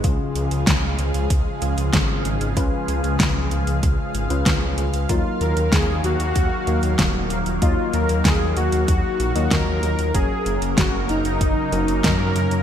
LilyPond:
<<
  \new Staff \with { instrumentName = "Supersaw synth" } { \time 4/4 \key cis \mixolydian \tempo 4 = 95 r1 | r1 | eis'8 ais'8 gis'8 fis'2 r8 | eis'8 ais'8 gis'8 fis'4. ais'4 |
gis'4 fis'8 dis'4. ais'4 | }
  \new Staff \with { instrumentName = "Tine electric piano" } { \time 4/4 \key cis \mixolydian <cis cis' eis' gis'>2~ <cis cis' eis' gis'>8 <cis cis' eis' gis'>4. | <cis cis' eis' b'>2~ <cis cis' eis' b'>8. <cis cis' eis' b'>4~ <cis cis' eis' b'>16 | <fis ais dis' ais' eis''>2~ <fis ais dis' ais' eis''>8 <fis ais dis' ais' eis''>4. | <fis ais dis' dis'' eis''>2~ <fis ais dis' dis'' eis''>8. <fis ais dis' eis' dis''>4~ <fis ais dis' eis' dis''>16 |
<fis cis' fis' ais'>2~ <fis cis' fis' ais'>8 <fis cis' fis' ais'>4. | }
  \new Staff \with { instrumentName = "Analog synth pad" } { \clef bass \time 4/4 \key cis \mixolydian << { eis''1~ | eis''1~ | eis''1~ | eis''1 |
r1 | } \\ { <cis eis gis gis'>1~ | <cis eis gis gis'>1 | <dis fis ais>1~ | <dis fis ais>1 |
<cis fis ais ais'>1 | } >> }
  \new Staff \with { instrumentName = "Detuned saw bass" } { \clef bass \time 4/4 \key cis \mixolydian cis,16 r16 cis,16 cis,16 cis,16 cis,16 cis,16 cis,16 cis,16 r16 cis,16 cis,16 gis,,16 gis,,16 gis,,16 gis,,16 | cis,16 r16 cis,16 cis,16 cis,16 cis,16 cis,16 cis,16 cis,16 r16 gis,,16 cis,16 cis,16 cis,16 cis,16 cis,16 | dis,16 r16 dis,16 dis,16 dis,16 dis,16 dis,16 dis,16 dis,16 r16 dis,16 dis,16 dis,,16 dis,,16 dis,,16 dis,,16 | dis,16 r16 dis,16 dis,16 dis,16 dis,16 dis,16 dis,16 dis,16 r16 ais,,16 dis,16 dis,16 dis,16 dis,16 dis,16 |
fis,,16 r16 fis,,16 fis,,16 fis,,16 fis,,16 fis,,16 fis,,16 fis,,16 r16 fis,,16 fis,,16 fis,16 fis,16 fis,16 fis,16 | }
  \new DrumStaff \with { instrumentName = "Drums" } \drummode { \time 4/4 <hh bd>8 hh16 hh16 <hh bd sn>8 hh16 hh16 <hh bd>8 hh16 hh16 <hh bd sn>8 hh16 hh16 | <hh bd>8 hh16 hh16 <hh bd sn>8 hh16 hh16 <hh bd>8 hh16 hh16 <hh bd sn>8 hh16 hh16 | <hh bd>8 hh16 hh16 <hh bd sn>8 hh16 hh16 <hh bd>8 hh16 hh16 <hh bd sn>8 hh16 hh16 | <hh bd>8 hh16 hh16 <hh bd sn>8 hh16 hh16 <hh bd>8 hh16 hh16 <hh bd sn>8 hh16 hh16 |
<hh bd>8 hh16 hh16 <hh bd sn>8 hh16 hh16 <hh bd>8 hh16 hh16 <hh bd sn>8 hh16 hh16 | }
>>